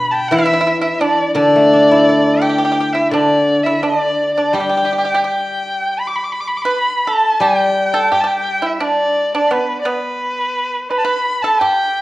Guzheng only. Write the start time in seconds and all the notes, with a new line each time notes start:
Already playing: B2
0.31 E3
1.35 D3
1.56 A3
1.74 D4
1.91 E4
2.09 A4
3.11 D3
4.53 G3
7.40 G3